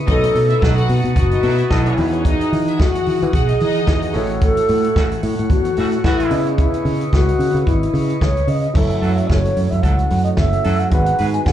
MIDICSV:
0, 0, Header, 1, 8, 480
1, 0, Start_track
1, 0, Tempo, 542005
1, 70, Time_signature, 4, 2, 24, 8
1, 10205, End_track
2, 0, Start_track
2, 0, Title_t, "Alto flute"
2, 0, Program_c, 0, 73
2, 84, Note_on_c, 0, 69, 126
2, 761, Note_off_c, 0, 69, 0
2, 1047, Note_on_c, 0, 66, 93
2, 1516, Note_on_c, 0, 64, 98
2, 1529, Note_off_c, 0, 66, 0
2, 2000, Note_on_c, 0, 63, 105
2, 2013, Note_off_c, 0, 64, 0
2, 2489, Note_on_c, 0, 66, 110
2, 2502, Note_off_c, 0, 63, 0
2, 2966, Note_on_c, 0, 68, 100
2, 2980, Note_off_c, 0, 66, 0
2, 3678, Note_off_c, 0, 68, 0
2, 3928, Note_on_c, 0, 69, 127
2, 4604, Note_off_c, 0, 69, 0
2, 4871, Note_on_c, 0, 66, 109
2, 5347, Note_on_c, 0, 64, 124
2, 5360, Note_off_c, 0, 66, 0
2, 5822, Note_off_c, 0, 64, 0
2, 5828, Note_on_c, 0, 64, 115
2, 6275, Note_off_c, 0, 64, 0
2, 6304, Note_on_c, 0, 66, 107
2, 6791, Note_on_c, 0, 64, 87
2, 6804, Note_off_c, 0, 66, 0
2, 7270, Note_off_c, 0, 64, 0
2, 7284, Note_on_c, 0, 73, 90
2, 7518, Note_on_c, 0, 75, 89
2, 7532, Note_off_c, 0, 73, 0
2, 7753, Note_on_c, 0, 76, 94
2, 7766, Note_off_c, 0, 75, 0
2, 8084, Note_off_c, 0, 76, 0
2, 8089, Note_on_c, 0, 78, 67
2, 8112, Note_on_c, 0, 76, 83
2, 8125, Note_off_c, 0, 78, 0
2, 8212, Note_on_c, 0, 73, 88
2, 8225, Note_off_c, 0, 76, 0
2, 8595, Note_on_c, 0, 76, 88
2, 8608, Note_off_c, 0, 73, 0
2, 8698, Note_on_c, 0, 78, 88
2, 8711, Note_off_c, 0, 76, 0
2, 9064, Note_off_c, 0, 78, 0
2, 9070, Note_on_c, 0, 75, 86
2, 9120, Note_off_c, 0, 75, 0
2, 9184, Note_on_c, 0, 76, 105
2, 9561, Note_on_c, 0, 78, 102
2, 9574, Note_off_c, 0, 76, 0
2, 9667, Note_off_c, 0, 78, 0
2, 9672, Note_on_c, 0, 78, 115
2, 10018, Note_off_c, 0, 78, 0
2, 10034, Note_on_c, 0, 80, 108
2, 10150, Note_on_c, 0, 78, 101
2, 10163, Note_off_c, 0, 80, 0
2, 10205, Note_off_c, 0, 78, 0
2, 10205, End_track
3, 0, Start_track
3, 0, Title_t, "Tonewheel organ"
3, 0, Program_c, 1, 16
3, 0, Note_on_c, 1, 71, 62
3, 0, Note_on_c, 1, 85, 59
3, 63, Note_on_c, 1, 81, 64
3, 65, Note_on_c, 1, 87, 70
3, 1713, Note_off_c, 1, 85, 0
3, 1720, Note_off_c, 1, 71, 0
3, 1730, Note_off_c, 1, 81, 0
3, 1748, Note_on_c, 1, 68, 63
3, 1749, Note_on_c, 1, 78, 61
3, 3632, Note_off_c, 1, 87, 0
3, 3650, Note_off_c, 1, 68, 0
3, 3658, Note_on_c, 1, 85, 58
3, 3660, Note_on_c, 1, 69, 68
3, 5554, Note_off_c, 1, 78, 0
3, 5566, Note_off_c, 1, 69, 0
3, 5588, Note_on_c, 1, 71, 71
3, 5590, Note_on_c, 1, 75, 61
3, 7708, Note_off_c, 1, 85, 0
3, 7727, Note_off_c, 1, 71, 0
3, 7728, Note_off_c, 1, 75, 0
3, 7755, Note_on_c, 1, 66, 71
3, 7756, Note_on_c, 1, 52, 67
3, 7758, Note_on_c, 1, 61, 58
3, 7760, Note_on_c, 1, 57, 54
3, 9652, Note_off_c, 1, 52, 0
3, 9654, Note_off_c, 1, 57, 0
3, 9654, Note_off_c, 1, 61, 0
3, 9674, Note_on_c, 1, 59, 55
3, 9677, Note_on_c, 1, 56, 62
3, 9679, Note_on_c, 1, 51, 65
3, 10205, Note_off_c, 1, 51, 0
3, 10205, Note_off_c, 1, 56, 0
3, 10205, Note_off_c, 1, 59, 0
3, 10205, Note_off_c, 1, 66, 0
3, 10205, End_track
4, 0, Start_track
4, 0, Title_t, "String section"
4, 0, Program_c, 2, 48
4, 57, Note_on_c, 2, 75, 121
4, 60, Note_on_c, 2, 63, 103
4, 254, Note_off_c, 2, 75, 0
4, 256, Note_off_c, 2, 63, 0
4, 436, Note_on_c, 2, 64, 83
4, 436, Note_on_c, 2, 76, 100
4, 524, Note_off_c, 2, 64, 0
4, 524, Note_off_c, 2, 76, 0
4, 538, Note_on_c, 2, 78, 120
4, 542, Note_on_c, 2, 66, 104
4, 995, Note_off_c, 2, 78, 0
4, 997, Note_off_c, 2, 66, 0
4, 1022, Note_on_c, 2, 78, 95
4, 1024, Note_on_c, 2, 66, 90
4, 1133, Note_off_c, 2, 78, 0
4, 1134, Note_off_c, 2, 66, 0
4, 1165, Note_on_c, 2, 75, 80
4, 1166, Note_on_c, 2, 63, 81
4, 1249, Note_off_c, 2, 75, 0
4, 1250, Note_off_c, 2, 63, 0
4, 1265, Note_on_c, 2, 64, 104
4, 1267, Note_on_c, 2, 76, 111
4, 1459, Note_off_c, 2, 64, 0
4, 1460, Note_off_c, 2, 76, 0
4, 1508, Note_on_c, 2, 75, 102
4, 1510, Note_on_c, 2, 63, 92
4, 1616, Note_off_c, 2, 75, 0
4, 1617, Note_off_c, 2, 63, 0
4, 1651, Note_on_c, 2, 61, 84
4, 1651, Note_on_c, 2, 73, 97
4, 1733, Note_off_c, 2, 61, 0
4, 1733, Note_off_c, 2, 73, 0
4, 1759, Note_on_c, 2, 71, 80
4, 1760, Note_on_c, 2, 59, 80
4, 1863, Note_off_c, 2, 59, 0
4, 1863, Note_off_c, 2, 71, 0
4, 1883, Note_on_c, 2, 61, 89
4, 1883, Note_on_c, 2, 73, 87
4, 1968, Note_off_c, 2, 61, 0
4, 1968, Note_off_c, 2, 73, 0
4, 1986, Note_on_c, 2, 75, 119
4, 1987, Note_on_c, 2, 63, 116
4, 2179, Note_off_c, 2, 75, 0
4, 2180, Note_off_c, 2, 63, 0
4, 2368, Note_on_c, 2, 64, 80
4, 2371, Note_on_c, 2, 76, 95
4, 2451, Note_off_c, 2, 64, 0
4, 2453, Note_off_c, 2, 76, 0
4, 2472, Note_on_c, 2, 78, 98
4, 2475, Note_on_c, 2, 66, 88
4, 2922, Note_off_c, 2, 78, 0
4, 2924, Note_off_c, 2, 66, 0
4, 2946, Note_on_c, 2, 78, 116
4, 2949, Note_on_c, 2, 66, 90
4, 3055, Note_off_c, 2, 78, 0
4, 3057, Note_off_c, 2, 66, 0
4, 3089, Note_on_c, 2, 75, 91
4, 3090, Note_on_c, 2, 63, 84
4, 3172, Note_off_c, 2, 63, 0
4, 3172, Note_off_c, 2, 75, 0
4, 3192, Note_on_c, 2, 75, 125
4, 3196, Note_on_c, 2, 63, 111
4, 3642, Note_off_c, 2, 75, 0
4, 3644, Note_off_c, 2, 63, 0
4, 10205, End_track
5, 0, Start_track
5, 0, Title_t, "Horn section"
5, 0, Program_c, 3, 61
5, 545, Note_on_c, 3, 63, 87
5, 546, Note_on_c, 3, 54, 92
5, 547, Note_on_c, 3, 69, 100
5, 632, Note_off_c, 3, 63, 0
5, 633, Note_off_c, 3, 54, 0
5, 633, Note_off_c, 3, 69, 0
5, 1264, Note_on_c, 3, 63, 89
5, 1267, Note_on_c, 3, 54, 81
5, 1267, Note_on_c, 3, 69, 89
5, 1352, Note_off_c, 3, 63, 0
5, 1353, Note_off_c, 3, 54, 0
5, 1354, Note_off_c, 3, 69, 0
5, 1504, Note_on_c, 3, 69, 121
5, 1504, Note_on_c, 3, 75, 99
5, 1507, Note_on_c, 3, 54, 102
5, 1825, Note_off_c, 3, 69, 0
5, 1825, Note_off_c, 3, 75, 0
5, 1827, Note_off_c, 3, 54, 0
5, 4395, Note_on_c, 3, 66, 98
5, 4396, Note_on_c, 3, 49, 87
5, 4396, Note_on_c, 3, 57, 89
5, 4479, Note_off_c, 3, 66, 0
5, 4480, Note_off_c, 3, 49, 0
5, 4480, Note_off_c, 3, 57, 0
5, 5112, Note_on_c, 3, 57, 87
5, 5112, Note_on_c, 3, 66, 93
5, 5113, Note_on_c, 3, 49, 83
5, 5197, Note_off_c, 3, 57, 0
5, 5197, Note_off_c, 3, 66, 0
5, 5198, Note_off_c, 3, 49, 0
5, 5352, Note_on_c, 3, 52, 105
5, 5352, Note_on_c, 3, 66, 122
5, 5355, Note_on_c, 3, 59, 108
5, 5670, Note_off_c, 3, 52, 0
5, 5670, Note_off_c, 3, 66, 0
5, 5671, Note_off_c, 3, 59, 0
5, 7987, Note_on_c, 3, 54, 74
5, 7988, Note_on_c, 3, 64, 72
5, 7989, Note_on_c, 3, 69, 89
5, 8074, Note_off_c, 3, 54, 0
5, 8074, Note_off_c, 3, 64, 0
5, 8074, Note_off_c, 3, 69, 0
5, 8706, Note_on_c, 3, 54, 77
5, 8706, Note_on_c, 3, 64, 76
5, 8706, Note_on_c, 3, 69, 82
5, 8793, Note_off_c, 3, 54, 0
5, 8793, Note_off_c, 3, 64, 0
5, 8793, Note_off_c, 3, 69, 0
5, 9425, Note_on_c, 3, 69, 96
5, 9427, Note_on_c, 3, 64, 85
5, 9428, Note_on_c, 3, 54, 90
5, 9579, Note_off_c, 3, 69, 0
5, 9580, Note_off_c, 3, 64, 0
5, 9581, Note_off_c, 3, 54, 0
5, 9906, Note_on_c, 3, 71, 85
5, 9907, Note_on_c, 3, 66, 75
5, 9908, Note_on_c, 3, 56, 78
5, 9992, Note_off_c, 3, 71, 0
5, 9993, Note_off_c, 3, 66, 0
5, 9994, Note_off_c, 3, 56, 0
5, 10205, End_track
6, 0, Start_track
6, 0, Title_t, "Grand piano"
6, 0, Program_c, 4, 0
6, 0, Control_c, 4, 64, 127
6, 57, Note_on_c, 4, 47, 68
6, 64, Note_on_c, 4, 57, 56
6, 70, Note_on_c, 4, 61, 56
6, 81, Control_c, 4, 64, 0
6, 84, Note_on_c, 4, 63, 63
6, 213, Control_c, 4, 64, 127
6, 1709, Note_off_c, 4, 47, 0
6, 1713, Note_off_c, 4, 57, 0
6, 1716, Note_off_c, 4, 61, 0
6, 1723, Note_off_c, 4, 63, 0
6, 1747, Note_on_c, 4, 52, 74
6, 1750, Note_on_c, 4, 63, 69
6, 1760, Control_c, 4, 64, 0
6, 1760, Note_on_c, 4, 66, 69
6, 1772, Note_on_c, 4, 68, 79
6, 1899, Control_c, 4, 64, 127
6, 3395, Note_off_c, 4, 52, 0
6, 3397, Note_off_c, 4, 63, 0
6, 3402, Note_off_c, 4, 66, 0
6, 3408, Note_off_c, 4, 68, 0
6, 3427, Note_on_c, 4, 52, 52
6, 3427, Note_on_c, 4, 63, 47
6, 3431, Note_on_c, 4, 66, 45
6, 3437, Note_on_c, 4, 68, 60
6, 3661, Note_on_c, 4, 57, 78
6, 3667, Note_off_c, 4, 66, 0
6, 3669, Note_off_c, 4, 52, 0
6, 3669, Note_off_c, 4, 63, 0
6, 3670, Note_on_c, 4, 64, 71
6, 3674, Note_off_c, 4, 68, 0
6, 3680, Control_c, 4, 64, 0
6, 3680, Note_on_c, 4, 66, 71
6, 3687, Note_on_c, 4, 73, 83
6, 3815, Control_c, 4, 64, 127
6, 5550, Note_off_c, 4, 57, 0
6, 5555, Note_off_c, 4, 64, 0
6, 5560, Note_off_c, 4, 66, 0
6, 5563, Note_off_c, 4, 73, 0
6, 5575, Note_on_c, 4, 49, 71
6, 5585, Note_on_c, 4, 59, 61
6, 5594, Note_on_c, 4, 75, 66
6, 5601, Control_c, 4, 64, 0
6, 5605, Note_on_c, 4, 64, 83
6, 5734, Control_c, 4, 64, 127
6, 7466, Note_off_c, 4, 49, 0
6, 7472, Note_off_c, 4, 59, 0
6, 7476, Note_off_c, 4, 75, 0
6, 7481, Note_off_c, 4, 64, 0
6, 7736, Note_on_c, 4, 54, 63
6, 7747, Note_on_c, 4, 61, 63
6, 7756, Note_on_c, 4, 64, 57
6, 7759, Control_c, 4, 64, 0
6, 7761, Note_on_c, 4, 69, 74
6, 7916, Control_c, 4, 64, 127
6, 9626, Note_off_c, 4, 54, 0
6, 9632, Note_off_c, 4, 61, 0
6, 9636, Note_off_c, 4, 64, 0
6, 9639, Note_off_c, 4, 69, 0
6, 9655, Note_on_c, 4, 56, 70
6, 9666, Note_on_c, 4, 63, 58
6, 9673, Note_on_c, 4, 66, 64
6, 9679, Control_c, 4, 64, 0
6, 9681, Note_on_c, 4, 71, 73
6, 9816, Control_c, 4, 64, 127
6, 10205, Note_off_c, 4, 56, 0
6, 10205, Note_off_c, 4, 63, 0
6, 10205, Note_off_c, 4, 66, 0
6, 10205, Note_off_c, 4, 71, 0
6, 10205, End_track
7, 0, Start_track
7, 0, Title_t, "Fingered electric bass"
7, 0, Program_c, 5, 33
7, 71, Note_on_c, 5, 35, 122
7, 234, Note_off_c, 5, 35, 0
7, 309, Note_on_c, 5, 47, 93
7, 472, Note_off_c, 5, 47, 0
7, 554, Note_on_c, 5, 35, 98
7, 716, Note_off_c, 5, 35, 0
7, 790, Note_on_c, 5, 47, 99
7, 881, Note_off_c, 5, 47, 0
7, 922, Note_on_c, 5, 47, 102
7, 995, Note_off_c, 5, 47, 0
7, 1030, Note_on_c, 5, 30, 91
7, 1193, Note_off_c, 5, 30, 0
7, 1268, Note_on_c, 5, 47, 107
7, 1431, Note_off_c, 5, 47, 0
7, 1511, Note_on_c, 5, 35, 97
7, 1674, Note_off_c, 5, 35, 0
7, 1755, Note_on_c, 5, 40, 103
7, 2079, Note_off_c, 5, 40, 0
7, 2236, Note_on_c, 5, 52, 94
7, 2397, Note_off_c, 5, 52, 0
7, 2477, Note_on_c, 5, 40, 102
7, 2638, Note_off_c, 5, 40, 0
7, 2720, Note_on_c, 5, 52, 86
7, 2808, Note_off_c, 5, 52, 0
7, 2857, Note_on_c, 5, 52, 116
7, 2925, Note_off_c, 5, 52, 0
7, 2955, Note_on_c, 5, 35, 92
7, 3116, Note_off_c, 5, 35, 0
7, 3199, Note_on_c, 5, 52, 93
7, 3359, Note_off_c, 5, 52, 0
7, 3432, Note_on_c, 5, 40, 108
7, 3594, Note_off_c, 5, 40, 0
7, 3680, Note_on_c, 5, 33, 105
7, 4003, Note_off_c, 5, 33, 0
7, 4156, Note_on_c, 5, 45, 104
7, 4317, Note_off_c, 5, 45, 0
7, 4393, Note_on_c, 5, 33, 84
7, 4555, Note_off_c, 5, 33, 0
7, 4633, Note_on_c, 5, 45, 112
7, 4724, Note_off_c, 5, 45, 0
7, 4775, Note_on_c, 5, 45, 104
7, 4843, Note_off_c, 5, 45, 0
7, 4869, Note_on_c, 5, 40, 89
7, 5033, Note_off_c, 5, 40, 0
7, 5118, Note_on_c, 5, 45, 104
7, 5279, Note_off_c, 5, 45, 0
7, 5353, Note_on_c, 5, 33, 91
7, 5515, Note_off_c, 5, 33, 0
7, 5587, Note_on_c, 5, 49, 96
7, 5914, Note_off_c, 5, 49, 0
7, 6066, Note_on_c, 5, 49, 105
7, 6231, Note_off_c, 5, 49, 0
7, 6312, Note_on_c, 5, 37, 100
7, 6474, Note_off_c, 5, 37, 0
7, 6544, Note_on_c, 5, 49, 101
7, 6637, Note_off_c, 5, 49, 0
7, 6681, Note_on_c, 5, 49, 101
7, 6754, Note_off_c, 5, 49, 0
7, 6794, Note_on_c, 5, 32, 87
7, 6955, Note_off_c, 5, 32, 0
7, 7027, Note_on_c, 5, 49, 99
7, 7191, Note_off_c, 5, 49, 0
7, 7276, Note_on_c, 5, 37, 90
7, 7437, Note_off_c, 5, 37, 0
7, 7504, Note_on_c, 5, 49, 91
7, 7669, Note_off_c, 5, 49, 0
7, 7750, Note_on_c, 5, 30, 114
7, 7913, Note_off_c, 5, 30, 0
7, 7988, Note_on_c, 5, 42, 90
7, 8152, Note_off_c, 5, 42, 0
7, 8233, Note_on_c, 5, 30, 96
7, 8395, Note_off_c, 5, 30, 0
7, 8473, Note_on_c, 5, 42, 80
7, 8563, Note_off_c, 5, 42, 0
7, 8609, Note_on_c, 5, 42, 89
7, 8679, Note_off_c, 5, 42, 0
7, 8710, Note_on_c, 5, 37, 90
7, 8872, Note_off_c, 5, 37, 0
7, 8955, Note_on_c, 5, 42, 103
7, 9116, Note_off_c, 5, 42, 0
7, 9191, Note_on_c, 5, 30, 90
7, 9353, Note_off_c, 5, 30, 0
7, 9435, Note_on_c, 5, 42, 105
7, 9596, Note_off_c, 5, 42, 0
7, 9670, Note_on_c, 5, 32, 116
7, 9833, Note_off_c, 5, 32, 0
7, 9916, Note_on_c, 5, 44, 91
7, 10076, Note_off_c, 5, 44, 0
7, 10150, Note_on_c, 5, 32, 97
7, 10205, Note_off_c, 5, 32, 0
7, 10205, End_track
8, 0, Start_track
8, 0, Title_t, "Drums"
8, 70, Note_on_c, 9, 36, 99
8, 70, Note_on_c, 9, 42, 53
8, 158, Note_off_c, 9, 36, 0
8, 159, Note_off_c, 9, 42, 0
8, 209, Note_on_c, 9, 42, 59
8, 297, Note_off_c, 9, 42, 0
8, 313, Note_on_c, 9, 46, 66
8, 402, Note_off_c, 9, 46, 0
8, 445, Note_on_c, 9, 42, 57
8, 534, Note_off_c, 9, 42, 0
8, 552, Note_on_c, 9, 36, 106
8, 560, Note_on_c, 9, 38, 92
8, 640, Note_off_c, 9, 36, 0
8, 649, Note_off_c, 9, 38, 0
8, 688, Note_on_c, 9, 42, 52
8, 777, Note_off_c, 9, 42, 0
8, 788, Note_on_c, 9, 46, 60
8, 876, Note_off_c, 9, 46, 0
8, 931, Note_on_c, 9, 42, 47
8, 1019, Note_off_c, 9, 42, 0
8, 1027, Note_on_c, 9, 36, 110
8, 1033, Note_on_c, 9, 42, 64
8, 1116, Note_off_c, 9, 36, 0
8, 1122, Note_off_c, 9, 42, 0
8, 1163, Note_on_c, 9, 42, 41
8, 1252, Note_off_c, 9, 42, 0
8, 1265, Note_on_c, 9, 46, 77
8, 1353, Note_off_c, 9, 46, 0
8, 1403, Note_on_c, 9, 42, 46
8, 1492, Note_off_c, 9, 42, 0
8, 1510, Note_on_c, 9, 38, 117
8, 1511, Note_on_c, 9, 36, 98
8, 1599, Note_off_c, 9, 38, 0
8, 1600, Note_off_c, 9, 36, 0
8, 1645, Note_on_c, 9, 42, 53
8, 1734, Note_off_c, 9, 42, 0
8, 1747, Note_on_c, 9, 46, 71
8, 1836, Note_off_c, 9, 46, 0
8, 1887, Note_on_c, 9, 42, 42
8, 1976, Note_off_c, 9, 42, 0
8, 1993, Note_on_c, 9, 36, 109
8, 1997, Note_on_c, 9, 42, 65
8, 2081, Note_off_c, 9, 36, 0
8, 2085, Note_off_c, 9, 42, 0
8, 2133, Note_on_c, 9, 42, 50
8, 2222, Note_off_c, 9, 42, 0
8, 2239, Note_on_c, 9, 46, 61
8, 2327, Note_off_c, 9, 46, 0
8, 2372, Note_on_c, 9, 42, 50
8, 2460, Note_off_c, 9, 42, 0
8, 2476, Note_on_c, 9, 36, 105
8, 2485, Note_on_c, 9, 38, 110
8, 2565, Note_off_c, 9, 36, 0
8, 2573, Note_off_c, 9, 38, 0
8, 2614, Note_on_c, 9, 42, 56
8, 2703, Note_off_c, 9, 42, 0
8, 2713, Note_on_c, 9, 46, 71
8, 2802, Note_off_c, 9, 46, 0
8, 2854, Note_on_c, 9, 42, 46
8, 2942, Note_off_c, 9, 42, 0
8, 2952, Note_on_c, 9, 36, 108
8, 2961, Note_on_c, 9, 42, 56
8, 3040, Note_off_c, 9, 36, 0
8, 3049, Note_off_c, 9, 42, 0
8, 3086, Note_on_c, 9, 42, 44
8, 3174, Note_off_c, 9, 42, 0
8, 3191, Note_on_c, 9, 46, 77
8, 3279, Note_off_c, 9, 46, 0
8, 3322, Note_on_c, 9, 42, 46
8, 3411, Note_off_c, 9, 42, 0
8, 3428, Note_on_c, 9, 38, 109
8, 3432, Note_on_c, 9, 36, 95
8, 3516, Note_off_c, 9, 38, 0
8, 3521, Note_off_c, 9, 36, 0
8, 3563, Note_on_c, 9, 42, 56
8, 3651, Note_off_c, 9, 42, 0
8, 3662, Note_on_c, 9, 46, 71
8, 3751, Note_off_c, 9, 46, 0
8, 3803, Note_on_c, 9, 42, 42
8, 3892, Note_off_c, 9, 42, 0
8, 3908, Note_on_c, 9, 42, 60
8, 3912, Note_on_c, 9, 36, 114
8, 3997, Note_off_c, 9, 42, 0
8, 4000, Note_off_c, 9, 36, 0
8, 4046, Note_on_c, 9, 42, 59
8, 4135, Note_off_c, 9, 42, 0
8, 4149, Note_on_c, 9, 46, 67
8, 4237, Note_off_c, 9, 46, 0
8, 4290, Note_on_c, 9, 42, 57
8, 4378, Note_off_c, 9, 42, 0
8, 4393, Note_on_c, 9, 36, 101
8, 4397, Note_on_c, 9, 38, 112
8, 4482, Note_off_c, 9, 36, 0
8, 4486, Note_off_c, 9, 38, 0
8, 4530, Note_on_c, 9, 42, 53
8, 4618, Note_off_c, 9, 42, 0
8, 4629, Note_on_c, 9, 46, 69
8, 4718, Note_off_c, 9, 46, 0
8, 4771, Note_on_c, 9, 42, 52
8, 4860, Note_off_c, 9, 42, 0
8, 4869, Note_on_c, 9, 36, 102
8, 4872, Note_on_c, 9, 42, 57
8, 4957, Note_off_c, 9, 36, 0
8, 4961, Note_off_c, 9, 42, 0
8, 5002, Note_on_c, 9, 42, 46
8, 5090, Note_off_c, 9, 42, 0
8, 5106, Note_on_c, 9, 46, 80
8, 5195, Note_off_c, 9, 46, 0
8, 5241, Note_on_c, 9, 42, 49
8, 5329, Note_off_c, 9, 42, 0
8, 5352, Note_on_c, 9, 36, 96
8, 5352, Note_on_c, 9, 38, 96
8, 5440, Note_off_c, 9, 36, 0
8, 5441, Note_off_c, 9, 38, 0
8, 5489, Note_on_c, 9, 42, 56
8, 5577, Note_off_c, 9, 42, 0
8, 5584, Note_on_c, 9, 46, 66
8, 5673, Note_off_c, 9, 46, 0
8, 5726, Note_on_c, 9, 42, 38
8, 5815, Note_off_c, 9, 42, 0
8, 5830, Note_on_c, 9, 36, 112
8, 5832, Note_on_c, 9, 42, 58
8, 5918, Note_off_c, 9, 36, 0
8, 5921, Note_off_c, 9, 42, 0
8, 5966, Note_on_c, 9, 42, 55
8, 6055, Note_off_c, 9, 42, 0
8, 6073, Note_on_c, 9, 46, 70
8, 6161, Note_off_c, 9, 46, 0
8, 6208, Note_on_c, 9, 42, 57
8, 6296, Note_off_c, 9, 42, 0
8, 6313, Note_on_c, 9, 36, 96
8, 6319, Note_on_c, 9, 38, 108
8, 6401, Note_off_c, 9, 36, 0
8, 6408, Note_off_c, 9, 38, 0
8, 6452, Note_on_c, 9, 42, 54
8, 6541, Note_off_c, 9, 42, 0
8, 6554, Note_on_c, 9, 46, 66
8, 6643, Note_off_c, 9, 46, 0
8, 6700, Note_on_c, 9, 42, 50
8, 6789, Note_off_c, 9, 42, 0
8, 6792, Note_on_c, 9, 36, 96
8, 6803, Note_on_c, 9, 42, 55
8, 6880, Note_off_c, 9, 36, 0
8, 6891, Note_off_c, 9, 42, 0
8, 6933, Note_on_c, 9, 42, 44
8, 7021, Note_off_c, 9, 42, 0
8, 7036, Note_on_c, 9, 46, 72
8, 7125, Note_off_c, 9, 46, 0
8, 7171, Note_on_c, 9, 42, 47
8, 7259, Note_off_c, 9, 42, 0
8, 7274, Note_on_c, 9, 36, 95
8, 7279, Note_on_c, 9, 38, 104
8, 7362, Note_off_c, 9, 36, 0
8, 7367, Note_off_c, 9, 38, 0
8, 7411, Note_on_c, 9, 42, 53
8, 7499, Note_off_c, 9, 42, 0
8, 7507, Note_on_c, 9, 46, 68
8, 7595, Note_off_c, 9, 46, 0
8, 7648, Note_on_c, 9, 42, 40
8, 7736, Note_off_c, 9, 42, 0
8, 7749, Note_on_c, 9, 36, 109
8, 7753, Note_on_c, 9, 49, 86
8, 7838, Note_off_c, 9, 36, 0
8, 7841, Note_off_c, 9, 49, 0
8, 7884, Note_on_c, 9, 42, 50
8, 7972, Note_off_c, 9, 42, 0
8, 7995, Note_on_c, 9, 46, 66
8, 8083, Note_off_c, 9, 46, 0
8, 8127, Note_on_c, 9, 42, 53
8, 8216, Note_off_c, 9, 42, 0
8, 8233, Note_on_c, 9, 36, 97
8, 8242, Note_on_c, 9, 38, 98
8, 8321, Note_off_c, 9, 36, 0
8, 8331, Note_off_c, 9, 38, 0
8, 8372, Note_on_c, 9, 42, 54
8, 8461, Note_off_c, 9, 42, 0
8, 8471, Note_on_c, 9, 46, 58
8, 8560, Note_off_c, 9, 46, 0
8, 8610, Note_on_c, 9, 42, 48
8, 8699, Note_off_c, 9, 42, 0
8, 8709, Note_on_c, 9, 36, 97
8, 8718, Note_on_c, 9, 42, 63
8, 8798, Note_off_c, 9, 36, 0
8, 8806, Note_off_c, 9, 42, 0
8, 8845, Note_on_c, 9, 42, 38
8, 8933, Note_off_c, 9, 42, 0
8, 8948, Note_on_c, 9, 46, 71
8, 9036, Note_off_c, 9, 46, 0
8, 9079, Note_on_c, 9, 42, 46
8, 9168, Note_off_c, 9, 42, 0
8, 9183, Note_on_c, 9, 38, 107
8, 9189, Note_on_c, 9, 36, 89
8, 9272, Note_off_c, 9, 38, 0
8, 9277, Note_off_c, 9, 36, 0
8, 9323, Note_on_c, 9, 42, 53
8, 9412, Note_off_c, 9, 42, 0
8, 9425, Note_on_c, 9, 46, 69
8, 9513, Note_off_c, 9, 46, 0
8, 9565, Note_on_c, 9, 42, 40
8, 9653, Note_off_c, 9, 42, 0
8, 9664, Note_on_c, 9, 42, 58
8, 9667, Note_on_c, 9, 36, 113
8, 9753, Note_off_c, 9, 42, 0
8, 9756, Note_off_c, 9, 36, 0
8, 9796, Note_on_c, 9, 42, 60
8, 9884, Note_off_c, 9, 42, 0
8, 9904, Note_on_c, 9, 46, 66
8, 9993, Note_off_c, 9, 46, 0
8, 10040, Note_on_c, 9, 42, 54
8, 10129, Note_off_c, 9, 42, 0
8, 10150, Note_on_c, 9, 36, 101
8, 10152, Note_on_c, 9, 38, 105
8, 10205, Note_off_c, 9, 36, 0
8, 10205, Note_off_c, 9, 38, 0
8, 10205, End_track
0, 0, End_of_file